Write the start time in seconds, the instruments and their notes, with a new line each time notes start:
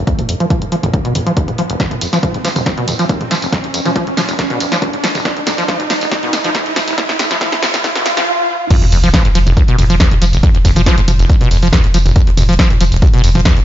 Already playing: riser
0.07 acid bass F2, kick, closed hi-hat
0.19 acid bass D#2, closed hi-hat, mid tom
0.29 acid bass F2, open hi-hat
0.40 acid bass F3, closed hi-hat
0.50 acid bass F3, kick, closed hi-hat, mid tom
0.62 acid bass G#2, closed hi-hat
0.72 acid bass F3, open hi-hat
0.83 acid bass F1, closed hi-hat, mid tom
0.94 acid bass D#2, kick, closed hi-hat
1.05 acid bass B2, closed hi-hat
1.15 acid bass F2, mid tom, open hi-hat
1.26 acid bass F3, closed hi-hat
1.37 acid bass D#2, kick, closed hi-hat
1.48 acid bass G#2, closed hi-hat, mid tom
1.58 acid bass F3, open hi-hat
1.70 acid bass F1, closed hi-hat
1.80 acid bass F2, kick, snare, closed hi-hat, tambourine
1.91 acid bass D#2, closed hi-hat, mid tom
2.01 acid bass F2, open hi-hat, ride, tambourine
2.13 acid bass F3, snare, closed hi-hat, tambourine
2.23 acid bass F3, kick, closed hi-hat, mid tom
2.34 acid bass G#2, closed hi-hat
2.45 acid bass F3, snare, open hi-hat, ride, tambourine
2.56 acid bass F1, closed hi-hat, mid tom, tambourine
2.66 acid bass D#2, kick, snare, closed hi-hat, tambourine
2.78 acid bass B2, closed hi-hat
2.88 acid bass F2, mid tom, open hi-hat, ride, tambourine
2.99 acid bass F3, closed hi-hat, tambourine
3.09 acid bass D#2, kick, closed hi-hat, tambourine
3.21 acid bass G#2, closed hi-hat, mid tom
3.31 acid bass F3, snare, open hi-hat, ride, tambourine
3.42 acid bass F1, closed hi-hat, tambourine
3.52 acid bass F2, kick, snare, closed hi-hat, mid tom, tambourine
3.64 acid bass D#2, closed hi-hat
3.74 acid bass F2, open hi-hat, ride, tambourine
3.85 acid bass F3, closed hi-hat, mid tom, tambourine
3.96 acid bass F3, kick, closed hi-hat, tambourine
4.07 acid bass G#2, closed hi-hat
4.17 acid bass F3, snare, mid tom, open hi-hat, ride, tambourine
4.29 acid bass F1, closed hi-hat, tambourine
4.39 acid bass D#2, kick, snare, closed hi-hat, tambourine
4.50 acid bass B2, closed hi-hat, mid tom
4.60 acid bass F2, open hi-hat, ride, tambourine
4.72 acid bass F3, snare, closed hi-hat, tambourine
4.82 acid bass D#2, kick, closed hi-hat, mid tom, tambourine
4.93 acid bass G#2, closed hi-hat
5.04 acid bass F3, snare, open hi-hat, ride, tambourine
5.15 acid bass F1, closed hi-hat, mid tom, tambourine
5.25 acid bass F2, kick, snare, closed hi-hat
5.37 acid bass D#2, closed hi-hat
5.47 acid bass F2, snare, mid tom, open hi-hat, ride, tambourine
5.58 acid bass F3, closed hi-hat, tambourine
5.68 acid bass F3, kick, snare, closed hi-hat, tambourine
5.80 acid bass G#2, closed hi-hat, mid tom
5.90 acid bass F3, snare, open hi-hat, ride, tambourine
6.01 acid bass F1, closed hi-hat, tambourine
6.11 acid bass D#2, kick, snare, closed hi-hat, mid tom, tambourine
6.23 acid bass B2, closed hi-hat
6.33 acid bass F2, snare, open hi-hat, ride, tambourine
6.44 acid bass F3, closed hi-hat, mid tom, tambourine
6.55 acid bass D#2, kick, snare, closed hi-hat, tambourine
6.66 acid bass G#2, closed hi-hat
6.76 acid bass F3, snare, mid tom, open hi-hat, ride, tambourine
6.88 acid bass F1, closed hi-hat, tambourine
6.98 acid bass F2, kick, snare, closed hi-hat, tambourine
7.09 acid bass D#2, snare, closed hi-hat, mid tom
7.19 acid bass F2, kick, snare, open hi-hat, ride, tambourine
7.31 acid bass F3, snare, closed hi-hat, tambourine
7.41 acid bass F3, kick, snare, closed hi-hat, mid tom, tambourine
7.52 acid bass G#2, snare, closed hi-hat
7.63 acid bass F3, snare, open hi-hat, ride, tambourine
7.74 acid bass F1, snare, closed hi-hat, mid tom, tambourine
7.84 acid bass D#2, kick, snare, closed hi-hat, tambourine, swell
7.95 acid bass B2, snare, closed hi-hat
8.06 acid bass F2, snare, mid tom, open hi-hat, ride, tambourine
8.17 acid bass F3, snare, closed hi-hat, tambourine
8.70 acid bass F2, kick, closed hi-hat, tambourine, crash, sub drop
8.82 acid bass D#2, closed hi-hat, mid tom
8.92 sub bass F1, acid bass F2, open hi-hat, ride, tambourine
9.03 sub bass F1, acid bass F3, closed hi-hat, tambourine
9.14 acid bass F3, kick, snare, closed hi-hat, mid tom, tambourine
9.25 acid bass G#2, closed hi-hat
9.35 sub bass F1, acid bass F3, open hi-hat, ride, tambourine
9.47 acid bass F1, sub bass F1, closed hi-hat, mid tom, tambourine
9.57 acid bass D#2, kick, closed hi-hat, tambourine
9.68 acid bass B2, closed hi-hat
9.78 sub bass F1, acid bass F2, mid tom, open hi-hat, ride, tambourine
9.90 sub bass F1, acid bass F3, closed hi-hat, tambourine
10.00 acid bass D#2, kick, snare, closed hi-hat, tambourine
10.11 acid bass G#2, closed hi-hat, mid tom
10.22 sub bass F1, acid bass F3, open hi-hat, ride, tambourine
10.33 acid bass F1, sub bass F1, closed hi-hat, tambourine
10.43 acid bass F2, kick, closed hi-hat, mid tom, tambourine
10.55 acid bass D#2, closed hi-hat
10.65 sub bass F1, acid bass F2, kick, open hi-hat, ride, tambourine
10.76 sub bass F1, acid bass F3, closed hi-hat, mid tom, tambourine
10.86 acid bass F3, kick, snare, closed hi-hat, tambourine
10.98 acid bass G#2, closed hi-hat
11.08 sub bass F1, acid bass F3, mid tom, open hi-hat, ride, tambourine
11.19 sub bass F1, acid bass F1, closed hi-hat, tambourine
11.29 acid bass D#2, kick, closed hi-hat, tambourine
11.41 acid bass B2, closed hi-hat, mid tom
11.51 sub bass F1, acid bass F2, open hi-hat, ride, tambourine
11.62 sub bass F1, acid bass F3, closed hi-hat, tambourine
11.73 acid bass D#2, kick, snare, closed hi-hat, mid tom, tambourine
11.84 acid bass G#2, closed hi-hat
11.94 sub bass F1, acid bass F3, open hi-hat, ride, tambourine
12.06 sub bass F1, acid bass F1, closed hi-hat, mid tom, tambourine
12.16 acid bass F2, kick, closed hi-hat, tambourine
12.27 acid bass D#2, closed hi-hat
12.37 sub bass F1, acid bass F2, mid tom, open hi-hat, ride, tambourine
12.49 sub bass F1, acid bass F3, closed hi-hat, tambourine
12.59 acid bass F3, kick, snare, closed hi-hat
12.70 acid bass G#2, closed hi-hat, mid tom
12.81 sub bass F1, acid bass F3, open hi-hat, ride, tambourine
12.92 sub bass F1, acid bass F1, closed hi-hat, tambourine
13.02 acid bass D#2, kick, closed hi-hat, mid tom, tambourine
13.14 acid bass B2, closed hi-hat
13.24 sub bass F1, acid bass F2, open hi-hat, ride, tambourine
13.35 sub bass F1, acid bass F3, closed hi-hat, mid tom, tambourine
13.45 acid bass D#2, kick, snare, closed hi-hat
13.57 acid bass G#2, closed hi-hat